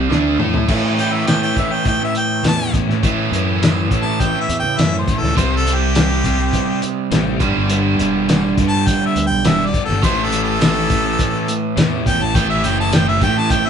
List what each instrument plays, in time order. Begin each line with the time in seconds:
Already playing: overdriven electric guitar C4
0.10 fingered electric bass D2, overdriven electric guitar D3 A3 D4, snare
0.39 fingered electric bass A2, overdriven electric guitar A3 E4 A4, mid tom
0.54 floor tom
0.68 fingered electric bass A2, overdriven electric guitar A2 E3 A3 C#4 E4, kick, crash
0.98 overdriven electric guitar E3 A3 C#4 E4, harmonica G5, closed hi-hat
1.13 harmonica E5
1.26 overdriven electric guitar A2 E3 A3 C#4 E4, harmonica G5, snare, closed hi-hat, tambourine
1.40 overdriven electric guitar A3 C#4 E4, harmonica G5
1.56 overdriven electric guitar E3 A3 C#4 E4, harmonica E5, kick, closed hi-hat
1.70 overdriven electric guitar A3 C#4 E4, harmonica G5
1.85 harmonica G5, kick, closed hi-hat
1.99 overdriven electric guitar A3 C#4 E4
2.04 harmonica E5
2.14 harmonica G5, muted overdriven electric guitar stroke, closed hi-hat
2.43 fingered electric bass E2, overdriven electric guitar A2 E3 A3 C#4 E4, snare, closed hi-hat, tambourine
2.48 harmonica A5
2.57 overdriven electric guitar A3 C#4 E4
2.72 fingered electric bass E2, overdriven electric guitar E3 A3 C#4 E4, kick, closed hi-hat
2.88 fingered electric bass A2, overdriven electric guitar A3 C#4 E4, snare
3.02 overdriven electric guitar A2 E3 A3 C#4 E4, kick, closed hi-hat
3.31 fingered electric bass F#2, overdriven electric guitar E3 A3 C#4 E4, closed hi-hat
3.62 overdriven electric guitar A2 E3 A3 C#4 E4, snare, closed hi-hat, tambourine
3.77 overdriven electric guitar A3 C#4 E4
3.91 fingered electric bass A2, overdriven electric guitar E3 A3 C#4 E4, kick, closed hi-hat
4.02 overdriven electric guitar E4, harmonica A5
4.07 overdriven electric guitar A3 C#4
4.20 harmonica G5, kick, closed hi-hat
4.35 overdriven electric guitar A3 C#4 E4
4.41 harmonica E5
4.49 fingered electric bass E2, muted overdriven electric guitar stroke, closed hi-hat
4.59 fingered electric bass C#3, harmonica G5
4.78 fingered electric bass F#2, overdriven electric guitar A2 E3 A3 C#4 E4, harmonica E5, snare, closed hi-hat, tambourine
4.93 overdriven electric guitar A3 C#4 E4
4.99 harmonica C5
5.07 overdriven electric guitar E3 A3 C#4 E4, kick, closed hi-hat
5.18 fingered electric bass C#2, overdriven electric guitar E4, harmonica A4
5.23 overdriven electric guitar A3 C#4, snare
5.37 fingered electric bass C2, overdriven electric guitar C3 G3 C4 E4, harmonica C5, kick, closed hi-hat
5.56 harmonica A4
5.66 overdriven electric guitar C3 G3 C4 E4, closed hi-hat
5.75 harmonica G4
5.95 overdriven electric guitar C3 G3 C4 E4, snare, closed hi-hat, tambourine
6.09 overdriven electric guitar G3 C4 E4
6.24 overdriven electric guitar C3 G3 C4 E4, kick, closed hi-hat
6.37 overdriven electric guitar G3 C4 E4
6.53 kick, closed hi-hat
6.67 overdriven electric guitar G3 C4 E4
6.82 muted overdriven electric guitar stroke, closed hi-hat
7.11 fingered electric bass A1, overdriven electric guitar C3 G3 C4 E4, snare, closed hi-hat, tambourine
7.25 overdriven electric guitar G3 C4 E4
7.40 fingered electric bass G1, overdriven electric guitar G2 D3 G3 B3 D4, kick, closed hi-hat
7.55 fingered electric bass G1, overdriven electric guitar G3 B3 D4
7.69 overdriven electric guitar G2 D3 G3 B3 D4, closed hi-hat
7.99 fingered electric bass E1, overdriven electric guitar D3 G3 B3 D4, closed hi-hat
8.28 overdriven electric guitar G2 D3 G3 B3 D4, snare, closed hi-hat, tambourine
8.43 overdriven electric guitar G3 B3 D4
8.57 fingered electric bass G2, overdriven electric guitar D3 G3 B3 D4, kick, closed hi-hat
8.68 harmonica A5
8.73 overdriven electric guitar G3 B3 D4
8.87 harmonica G5, kick, closed hi-hat
9.02 overdriven electric guitar G3 B3 D4
9.06 harmonica E5
9.15 fingered electric bass D2, muted overdriven electric guitar stroke, closed hi-hat
9.27 fingered electric bass B1, harmonica G5
9.45 fingered electric bass E1, overdriven electric guitar G2 D3 G3 B3 D4, harmonica E5, snare, closed hi-hat, tambourine
9.60 overdriven electric guitar G3 B3 D4
9.66 harmonica D5
9.74 overdriven electric guitar D3 G3 B3 D4, kick, closed hi-hat
9.85 fingered electric bass G1, overdriven electric guitar B3 D4, harmonica A4
9.89 overdriven electric guitar G3, snare
10.01 fingered electric bass A1, overdriven electric guitar A2 E3 A3 C#4 E4, harmonica C5, kick, closed hi-hat
10.24 harmonica A4
10.31 overdriven electric guitar E3 A3 C#4 E4, closed hi-hat
10.43 harmonica A4
10.59 overdriven electric guitar A2 E3 A3 C#4 E4, snare, closed hi-hat, tambourine
10.74 overdriven electric guitar A3 C#4 E4
10.89 overdriven electric guitar E3 A3 C#4 E4, kick, closed hi-hat
11.04 overdriven electric guitar A3 C#4 E4
11.19 kick, closed hi-hat
11.33 overdriven electric guitar A3 C#4 E4
11.48 muted overdriven electric guitar stroke, closed hi-hat
11.76 fingered electric bass E2, overdriven electric guitar A2 E3 A3 C#4 E4, snare, closed hi-hat, tambourine
11.90 overdriven electric guitar A3 C#4 E4
12.04 fingered electric bass E2, overdriven electric guitar E3 A3 C#4 E4, harmonica G5, kick, closed hi-hat
12.19 fingered electric bass A1, overdriven electric guitar A3 C#4 E4, harmonica A5
12.34 overdriven electric guitar A2 E3 A3 C#4 E4, harmonica G5, kick, closed hi-hat
12.50 harmonica E5
12.64 fingered electric bass F#1, overdriven electric guitar E3 A3 C#4 E4, harmonica G5, closed hi-hat
12.80 harmonica A5
12.92 overdriven electric guitar A2 E3 A3 C#4 E4, harmonica G5, snare, closed hi-hat, tambourine
13.07 overdriven electric guitar A3 C#4 E4, harmonica E5
13.21 fingered electric bass A2, overdriven electric guitar E3 A3 C#4 E4, harmonica G5, kick, closed hi-hat
13.36 overdriven electric guitar A3 C#4 E4, harmonica A5
13.50 harmonica G5, kick, closed hi-hat
13.64 overdriven electric guitar C#4 E4, harmonica E5